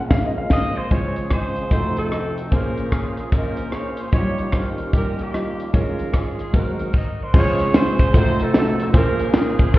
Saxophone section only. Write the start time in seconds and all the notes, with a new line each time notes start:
0.52 D#5
0.77 C5
0.92 F4 G#4 C#5
1.16 C#5
1.32 F4 G#4 C5
1.71 D#4 A4 C5
1.97 C4 D#4 A4
2.36 A4
2.53 C#4 F4 A#4
2.93 G#4
3.19 G#4
3.33 C#4 F4 A#4
3.73 C#5
4.00 C5
4.14 F4 G4 C#5
4.40 C#5
4.55 C#4 G4 A#4
4.94 C#4 G4 A#4
5.21 A#3 C#4 G4
5.61 G4
5.75 C#4 F4 A#4
6.15 G#4
6.40 G#4
6.54 D#4 F#4 A#4
6.97 D#5
7.21 A#4 C5
7.35 F4 G#4 C#5
7.60 C#5
7.74 F4 G#4 C5
8.16 D#4 A4 C5
8.42 A4
8.57 A4
8.83 A4
8.96 C#4 F4 A#4
9.38 G#4
9.62 G#4
9.76 F4